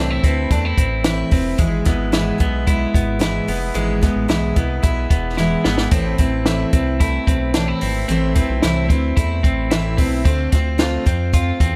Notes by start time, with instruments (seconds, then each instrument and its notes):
Already playing: analog synth bass C2, steel-string acoustic guitar A2 E3 A3 C4, clean electric guitar C4 D4
0.00 steel-string acoustic guitar E4 B4
0.10 clean electric guitar E4
0.24 analog synth bass D2, steel-string acoustic guitar A3 C4 E4 B4, kick, closed hi-hat
0.50 analog synth bass E2, steel-string acoustic guitar A3 C4 E4 B4, clean electric guitar D4, kick, closed hi-hat
0.65 clean electric guitar E4
0.78 analog synth bass A1, clean electric guitar C4, kick, closed hi-hat
1.04 steel-string acoustic guitar A2 E3 A3 C4 E4 B4, snare, closed hi-hat
1.31 analog synth bass F1, steel-string acoustic guitar A3 C4 E4 B4, kick, open hi-hat
1.58 analog synth bass G#1, steel-string acoustic guitar G#2 E3 G#3 B3 E4 G#4, kick, closed hi-hat
1.85 analog synth bass G#1, steel-string acoustic guitar G#3 B3 E4 G#4, kick, snare, closed hi-hat
2.12 steel-string acoustic guitar G#2 E3 G#3 B3 E4 G#4, snare, closed hi-hat
2.38 analog synth bass B1, steel-string acoustic guitar G#3 B3 E4 G#4, kick, closed hi-hat
2.67 steel-string acoustic guitar G#3 B3 E4 G#4, kick, closed hi-hat
2.94 analog synth bass G#1, clean electric guitar B3, kick, closed hi-hat
3.19 steel-string acoustic guitar G#2 E3 G#3 B3 E4 G#4, snare, closed hi-hat
3.47 analog synth bass F1, steel-string acoustic guitar G#3 B3 E4 G#4, open hi-hat
3.74 analog synth bass G#1, steel-string acoustic guitar G#2 E3 G#3 B3 E4 G#4, closed hi-hat
4.01 steel-string acoustic guitar G#3 B3 E4 G#4, kick, snare, closed hi-hat
4.15 analog synth bass A1
4.28 analog synth bass B1, steel-string acoustic guitar G#2 E3 G#3 B3 E4 G#4, snare, closed hi-hat
4.56 analog synth bass C2, steel-string acoustic guitar G#3 B3 E4 G#4, kick, closed hi-hat
4.82 analog synth bass B1, steel-string acoustic guitar G#3 B3 E4 G#4, kick, closed hi-hat
5.10 analog synth bass E1, clean electric guitar B3, kick, closed hi-hat
5.37 steel-string acoustic guitar G#2 E3 G#3 B3 E4 G#4, snare
5.65 analog synth bass G#1, steel-string acoustic guitar G#3 B3 E4 G#4, snare
5.78 snare
5.91 analog synth bass A1, steel-string acoustic guitar A2 E3 A3 C4 E4 B4, kick, closed hi-hat
6.18 analog synth bass A1, steel-string acoustic guitar A3 C4 E4 B4, kick, closed hi-hat
6.46 steel-string acoustic guitar A2 E3 A3 C4 E4 B4, snare, closed hi-hat
6.73 analog synth bass C2, steel-string acoustic guitar A3 C4 E4 B4, kick, closed hi-hat
7.00 steel-string acoustic guitar A3 C4 E4 B4, kick, closed hi-hat
7.27 analog synth bass B1, clean electric guitar C4, kick, closed hi-hat
7.54 steel-string acoustic guitar A2 E3 A3 C4 E4 B4, clean electric guitar D4, snare, closed hi-hat
7.68 clean electric guitar E4
7.81 analog synth bass G#1, steel-string acoustic guitar A3 C4 E4 B4, open hi-hat
8.09 analog synth bass A1, steel-string acoustic guitar A2 E3 A3 C4 E4 B4, closed hi-hat
8.35 steel-string acoustic guitar A3 C4 E4 B4, kick, closed hi-hat
8.50 analog synth bass B1
8.62 analog synth bass C2, steel-string acoustic guitar A2 E3 A3 C4 E4 B4, snare, closed hi-hat
8.90 analog synth bass D2, steel-string acoustic guitar A3 C4 E4 B4, kick, closed hi-hat
9.17 analog synth bass E2, steel-string acoustic guitar A3 C4 E4 B4, kick, closed hi-hat
9.43 analog synth bass A1, clean electric guitar C4, kick, closed hi-hat
9.71 steel-string acoustic guitar A2 E3 A3 C4 E4 B4, snare, closed hi-hat
9.98 analog synth bass B1, steel-string acoustic guitar A3 C4 E4 B4, kick, open hi-hat
10.25 analog synth bass D2, steel-string acoustic guitar D3 A3 C4 F4 C5, kick, closed hi-hat
10.52 analog synth bass D2, steel-string acoustic guitar C4 F4 C5, kick, snare, closed hi-hat
10.78 steel-string acoustic guitar D3 A3 C4 F4 C5, snare, closed hi-hat
11.06 analog synth bass F2, steel-string acoustic guitar C4 F4 C5, kick, closed hi-hat
11.33 steel-string acoustic guitar A3 C4 F4 C5, kick, closed hi-hat
11.60 analog synth bass E2, clean electric guitar C4, kick, closed hi-hat